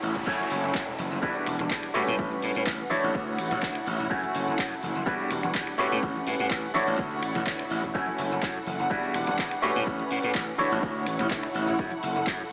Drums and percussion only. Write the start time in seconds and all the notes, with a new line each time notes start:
0.03 open hi-hat, tambourine
0.15 kick, closed hi-hat, tambourine, low conga, shaker
0.27 kick, tambourine, shaker
0.39 closed hi-hat, tambourine, high conga, shaker
0.50 open hi-hat, tambourine
0.63 closed hi-hat, tambourine, shaker
0.75 kick, clap, shaker
0.87 closed hi-hat, low conga, shaker
0.99 open hi-hat, tambourine, high conga
1.11 closed hi-hat, tambourine, shaker
1.22 kick, tambourine, shaker
1.35 closed hi-hat, shaker
1.46 finger snap, open hi-hat, tambourine
1.59 finger snap, closed hi-hat, tambourine, high conga, low conga, shaker
1.71 kick, clap, shaker
1.83 finger snap, closed hi-hat, shaker
1.95 open hi-hat, tambourine
2.07 closed hi-hat, tambourine, low conga, shaker
2.19 kick, tambourine, shaker
2.31 closed hi-hat, high conga, shaker
2.42 open hi-hat, tambourine
2.55 closed hi-hat, tambourine, shaker
2.67 kick, clap, shaker
2.79 shaker
2.90 open hi-hat, tambourine, high conga
3.03 closed hi-hat, tambourine, shaker
3.15 kick, tambourine, shaker
3.27 closed hi-hat, shaker
3.38 finger snap, open hi-hat, tambourine
3.51 finger snap, closed hi-hat, tambourine, high conga, low conga, shaker
3.63 kick, clap, tambourine, shaker
3.75 finger snap, closed hi-hat, shaker
3.87 open hi-hat, tambourine
3.99 closed hi-hat, tambourine, low conga, shaker
4.11 kick, tambourine, shaker
4.23 closed hi-hat, high conga, shaker
4.35 open hi-hat, tambourine
4.47 closed hi-hat, tambourine, shaker
4.58 kick, clap, tambourine, shaker
4.72 shaker
4.82 open hi-hat, tambourine, high conga
4.95 closed hi-hat, tambourine, shaker
5.06 kick, tambourine, shaker
5.19 closed hi-hat, shaker
5.31 finger snap, open hi-hat, tambourine
5.43 finger snap, closed hi-hat, tambourine, high conga, low conga, shaker
5.55 kick, clap, tambourine, shaker
5.67 finger snap, closed hi-hat, shaker
5.79 open hi-hat, tambourine
5.91 closed hi-hat, tambourine, low conga, shaker
6.03 kick, tambourine, shaker
6.15 closed hi-hat, high conga, shaker
6.26 open hi-hat, tambourine
6.39 closed hi-hat, tambourine, shaker
6.51 kick, clap, shaker
6.63 shaker
6.74 open hi-hat, tambourine, high conga
6.87 closed hi-hat, tambourine, shaker
6.99 kick, tambourine, shaker
7.11 closed hi-hat, tambourine, shaker
7.23 finger snap, open hi-hat, tambourine
7.35 finger snap, closed hi-hat, tambourine, high conga, low conga, shaker
7.47 kick, clap, shaker
7.59 finger snap, closed hi-hat, tambourine, shaker
7.71 open hi-hat, tambourine
7.83 kick, closed hi-hat, tambourine, low conga, shaker
7.95 kick, tambourine, shaker
8.07 closed hi-hat, high conga, shaker
8.18 open hi-hat, tambourine
8.31 closed hi-hat, tambourine, shaker
8.43 kick, clap, tambourine, shaker
8.55 closed hi-hat, shaker
8.67 open hi-hat, tambourine, high conga
8.79 closed hi-hat, tambourine, shaker
8.91 kick, shaker
9.03 closed hi-hat, shaker
9.14 finger snap, open hi-hat, tambourine
9.27 finger snap, tambourine, high conga, low conga, shaker
9.39 kick, clap, shaker
9.51 finger snap, closed hi-hat, shaker
9.62 open hi-hat, tambourine
9.75 closed hi-hat, tambourine, low conga, shaker
9.86 kick, tambourine, shaker
9.99 closed hi-hat, high conga, shaker
10.10 open hi-hat, tambourine
10.23 closed hi-hat, tambourine, shaker
10.35 kick, clap, shaker
10.47 shaker
10.59 open hi-hat, tambourine, high conga
10.71 closed hi-hat, tambourine, shaker
10.83 kick, tambourine, shaker
10.95 closed hi-hat, shaker
11.07 finger snap, open hi-hat, tambourine
11.19 finger snap, closed hi-hat, tambourine, high conga, low conga, shaker
11.30 kick, clap, tambourine, shaker
11.43 finger snap, closed hi-hat, shaker
11.55 open hi-hat, tambourine
11.67 closed hi-hat, tambourine, low conga, shaker
11.79 kick, tambourine, shaker
11.91 closed hi-hat, high conga, shaker
12.03 open hi-hat, tambourine
12.15 closed hi-hat, shaker
12.27 kick, clap, shaker
12.40 shaker